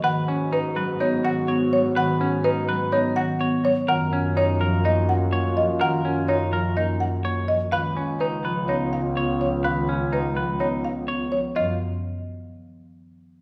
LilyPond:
<<
  \new Staff \with { instrumentName = "Marimba" } { \time 4/4 \key fis \major \tempo 4 = 125 fis''8 r8 b'8 r8 cis''8 fis''8 r8 cis''8 | fis''8 r8 b'8 r8 cis''8 fis''8 r8 cis''8 | fis''8 r8 cis''8 r8 dis''8 fis''8 r8 dis''8 | fis''8 r8 cis''8 r8 dis''8 fis''8 r8 dis''8 |
eis''8 r8 b'8 r8 cis''8 eis''8 r8 cis''8 | eis''8 r8 b'8 r8 cis''8 eis''8 r8 cis''8 | dis''8 r2. r8 | }
  \new Staff \with { instrumentName = "Clean electric guitar" } { \time 4/4 \key fis \major b'8 cis'8 dis'8 b'8 dis'8 fis'8 cis''8 r8 | b'8 cis'8 dis'8 b'8 dis'8 fis'8 cis''8 r8 | ais'8 cis'8 dis'8 ais'8 dis'8 r8 cis''8 r8 | ais'8 cis'8 dis'8 ais'8 dis'8 r8 cis''8 r8 |
b'8 cis'8 dis'8 b'8 dis'8 r8 cis''8 r8 | b'8 cis'8 dis'8 b'8 dis'8 r8 cis''8 r8 | eis'8 r2. r8 | }
  \new Staff \with { instrumentName = "Alto flute" } { \time 4/4 \key fis \major fis'1~ | fis'2.~ fis'8 r8 | eis'1~ | eis'2.~ eis'8 r8 |
eis'1~ | eis'2.~ eis'8 r8 | r1 | }
  \new Staff \with { instrumentName = "Marimba" } { \clef bass \time 4/4 \key fis \major dis8 cis'8 r8 fis8 b8 dis8 b8 fis8 | dis8 cis'8 r8 fis8 b8 dis8 b8 fis8 | dis8 cis'8 r8 eis8 ais8 r8 ais8 eis8 | dis8 cis'8 r8 eis8 ais8 r8 ais8 eis8 |
dis8 cis'8 r8 eis8 b8 r8 b8 eis8 | dis8 cis'8 r8 eis8 b8 r8 b8 eis8 | eis8 r2. r8 | }
  \new Staff \with { instrumentName = "Double bass section" } { \clef bass \time 4/4 \key fis \major gis,1~ | gis,1 | fis,1~ | fis,1 |
cis,1~ | cis,1 | fis,8 r2. r8 | }
>>